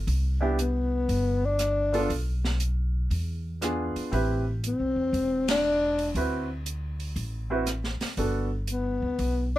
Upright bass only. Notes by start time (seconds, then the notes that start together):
0.07 C2
1.09 G1
2.10 B1
3.10 E2
3.96 muted upright bass stroke
4.12 A1
4.80 C2
4.96 E2
5.13 E1
6.15 D2
7.16 A1
8.02 muted upright bass stroke
8.17 G1
9.02 D2
9.19 B1